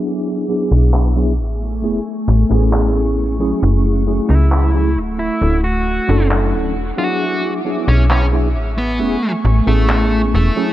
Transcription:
Already playing: F#3 B3 D4 E4 G#4 E5 F#5 D6
0.48 F#3 B3 D4 E4 G#4
0.71 B1
0.94 clap
1.15 F#3 B3 D4 E4 G#4
1.39 A1 A3 G#5 C#6
1.82 E1 A3 B3 C#4 E4 G#4
2.28 A1
2.49 A1 A3 B3 C#4 E4 G#4
2.73 clap
3.39 F#3 A3 C#4 E4 G#4
3.62 F#1 A3 F#5
4.06 F#3 A3 C#4 E4 G#4
4.30 C#2 E4
4.52 clap
4.73 F#3 A3 C#4 E4 G#4
4.97 D1
5.19 E4
5.41 D1 F#3 C#4 D4 E4 A4
5.64 F#4
6.08 F#1 F#3 C#4 D4 E4 A4
6.31 clap
6.53 D1
6.76 E1 G#4 E5 D6
6.97 F#3 B3 D4 E4 F#4 G#4
7.65 F#3 B3 D4 E4 G#4
7.88 B1 C#4
8.10 C#4, clap
8.32 F#3 B3 D4 E4 G#4
8.55 A1 A3 G#5 C#6
8.78 B3
8.99 E1 A3 B3 C#4 E4 G#4
9.45 A1
9.66 A1 A3 B3 C#4 E4 G#4
9.89 clap
10.34 E1 A3
10.56 F#3 A3 C#4 E4 G#4

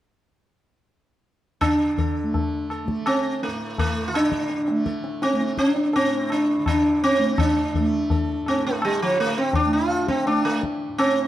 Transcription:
1.61 D3 D4, tabla na, tabla ge
1.98 A4, tabla ge
2.23 A3
2.34 tabla tin, tabla ge
2.70 A4, tabla na
2.85 A3, tabla ke
3.06 C4, tabla na
3.43 A3, tabla te
3.48 A2
3.78 A3, tabla tin, tabla ge
4.08 D3 F4
4.14 D4, tabla na
4.32 tabla ke
4.50 tabla te
4.68 A3, tabla te
4.86 A4, tabla ke
5.04 tabla te
5.22 C4, tabla te
5.33 A3
5.40 tabla te
5.58 D4, tabla ke
5.76 tabla te
5.93 A2 C4, tabla tin
6.30 D4, tabla na
6.57 D3
6.66 D4, tabla na, tabla ge
7.03 C4, tabla te
7.19 A3
7.38 D4, tabla na, tabla ge
7.74 A4, tabla ge
7.80 A3
8.10 A4, tabla tin, tabla ge
8.42 A2
8.46 C4, tabla na
8.67 A3
8.82 G3, tabla na
9.02 D3 F3
9.18 A3, tabla te
9.38 C4
9.53 D4, tabla tin, tabla ge
9.66 A3
9.73 F4
9.90 tabla na
10.08 C4, tabla ke
10.27 A3 D4, tabla na
10.45 A3
10.63 tabla ke
10.89 A2
10.98 C4, tabla na

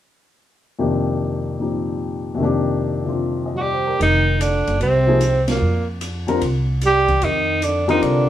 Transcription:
0.79 F2 C3 D#3 A#3 D4 G4
1.59 A#2 F3 C4 D#4 G4
2.35 F2 C3
2.39 D#3 A#3
2.43 D4 G4
3.05 C3 D3 G3 C4 F4
3.46 D#5
3.54 F#3 F#4
3.59 G3 G4 D5
3.73 C5
3.87 A#4
3.99 F1 D#3 D#4, ride
4.39 D3 D4, hi-hat pedal, ride
4.67 F#1, ride
4.80 C2 C3 C4, ride
5.07 C3 F3 A#3 D#4 G#4
5.21 hi-hat pedal, ride
5.48 A#2 A#3, snare, ride
5.61 F2
6.01 hi-hat pedal, ride
6.27 D3 G3 C4 F4 A#4, ride
6.41 C2, ride
6.81 G3, hi-hat pedal, ride
6.86 G4
7.08 kick, ride
7.22 F2 D#3 D#4, ride
7.62 D3 D4, hi-hat pedal, ride
7.88 D3 D#3 G3 C4 D#4 F4 A#4, ride
8.01 C2 D3 D4, ride

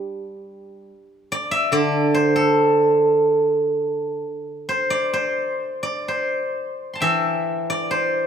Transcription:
Already playing: G3 D4 G4
1.32 D5
1.51 E5
1.72 D3 D5
2.14 C5
2.36 A4
4.69 C5
4.90 D5
5.13 C5
5.83 D5
6.08 C5
6.93 A5 C6
7.00 E3 E5 G5
7.70 D5
7.91 C5

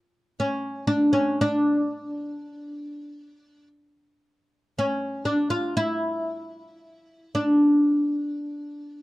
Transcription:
0.40 C#4
0.87 D4
1.13 C#4
1.41 D4
4.79 C#4
5.25 D4
5.50 F4
5.77 E4
7.35 D4

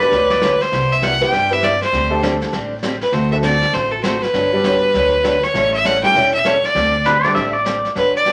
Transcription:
Already playing: B4
0.00 B3 D4 F#4 G4 B4 D5, snare
0.11 D2 D3 F#3 B3 D4 G4, brush sweep, snare
0.30 D5, snare
0.42 D3 F#3 B3 D4 G4, snare, hi-hat pedal
0.61 C5, snare
0.72 C2 C3 G3 B3 E4 G4, brush sweep, snare
0.92 E5
1.02 C3 G3 B3 E4 G4 F#5, snare, hi-hat pedal
1.21 B3 C4 E4 G4 B4 G5, snare
1.32 G2 C3 G3 B3 E4 G4, brush sweep, snare
1.50 B3 C4 E4 G4 B4 E5
1.63 C3 G3 B3 E4 G4 D5, snare, hi-hat pedal
1.82 C5, snare
1.92 D2 D3 G3 C4 D4 G4, brush sweep, snare
2.10 A3 C4 D4 G4 A4
2.22 D3 G3 C4 D4 G4, snare, hi-hat pedal
2.41 snare
2.52 A1 D3 G3 C4 D4 G4, brush sweep, snare
2.83 D3 G3 C4 D4 G4, snare, hi-hat pedal
3.01 B4, snare
3.12 D2 D3 A3 C4 F#4 A4 C5, brush sweep, snare
3.32 A3 C4 D4 F#4 A4 E5
3.43 D3 A3 C4 F#4 A4 D5, snare, hi-hat pedal
3.62 snare
3.73 A1 D3 A3 C4 F#4 A4 C5, brush sweep, snare
3.92 A4
4.03 D3 A3 C4 F#4 A4 C5, snare, hi-hat pedal
4.22 B4, snare
4.33 G1 D3 F#3 B3 D4 G4, brush sweep, snare
4.52 G3 B3 D4 F#4 G4
4.64 D3 F#3 B3 D4 G4, snare, hi-hat pedal
4.94 D2 D3 F#3 B3 D4 G4, brush sweep, snare
5.24 D3 F#3 B3 D4 G4, snare, hi-hat pedal
5.43 C#5, snare
5.54 A1 E3 G3 C#4 E4 A4, brush sweep, snare
5.74 E5
5.84 E3 G3 C#4 E4 A4 F#5, snare, hi-hat pedal
6.03 G3 A3 C#4 E4 G4 G5, snare
6.14 E1 E3 G3 C#4 E4 A4, brush sweep, snare
6.34 E5
6.45 E3 G3 C#4 E4 A4 C#5, snare, hi-hat pedal
6.64 D5, snare
6.75 D2 D3 G3 C4 D4 G4, brush sweep, snare
7.05 D3 G3 C4 D4 G4 B4, snare, hi-hat pedal
7.24 G3 A3 C4 D4 G4 D5, snare
7.34 A1 D3 G3 C4 D4 G4 E5, brush sweep, snare
7.53 D5
7.65 D3 G3 C4 D4 G4, snare, hi-hat pedal
7.85 snare
7.95 G1 D3 F#3 B3 D4 G4 B4, brush sweep, snare
8.16 D5
8.25 D3 F#3 B3 D4 G4, snare, hi-hat pedal

